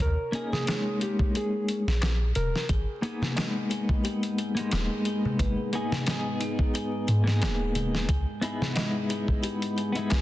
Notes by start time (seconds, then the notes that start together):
0.00 D#2 A#4, kick, closed hi-hat
0.32 A#3 C#4 D#4 G#4, closed hi-hat
0.53 G#4, snare, darbuka dum
0.64 A#3 C#4, closed hi-hat
0.68 G#3 D#4, snare, darbuka tek
1.01 G4, closed hi-hat
1.19 kick
1.35 G#4, closed hi-hat
1.68 closed hi-hat
1.87 A#1, snare
2.01 A#1, snare, closed hi-hat, darbuka tek
2.35 D#1 A#4, closed hi-hat, darbuka dum
2.56 snare
2.69 G#1 G#3 G#4, kick, closed hi-hat
3.02 A#3 B3 D#4 G#4, closed hi-hat
3.22 snare, darbuka dum
3.35 A#3 B3 D#4 D#5, snare, closed hi-hat, darbuka tek
3.40 G#3
3.70 G#4, closed hi-hat
3.89 kick
4.04 G4, closed hi-hat
4.23 closed hi-hat
4.38 G#4, closed hi-hat
4.55 A#3 B3 D#4, closed hi-hat
4.60 G#3
4.71 D#1 G#4, snare, closed hi-hat, darbuka tek
5.05 G#4, closed hi-hat
5.25 darbuka dum
5.39 G#1 B4, kick, closed hi-hat
5.73 A#3 B3 D#4 G#4, closed hi-hat
5.92 snare, darbuka dum
6.06 B3 D#4 G#4, snare, closed hi-hat, darbuka tek
6.11 G#4
6.40 D#4, closed hi-hat
6.59 kick
6.74 G#4, closed hi-hat
7.07 G#2 G#4, closed hi-hat
7.24 A#3 B3 D#4, snare
7.30 G#4
7.41 D#1 G#4, snare, closed hi-hat, darbuka tek
7.75 G#4, closed hi-hat, darbuka dum
7.95 snare
8.09 C#2 G#4, kick, closed hi-hat
8.41 B3 D#4 E4 G#4, closed hi-hat
8.62 snare, darbuka dum
8.73 B3 D#4 D#5, closed hi-hat
8.77 G#3 E4, snare, darbuka tek
9.09 G#4, closed hi-hat
9.28 kick
9.43 G4, closed hi-hat
9.62 closed hi-hat
9.76 G#4, closed hi-hat
9.92 B3 D#4, closed hi-hat
9.96 G#3 E4
10.10 B1 G#4, snare, closed hi-hat, darbuka tek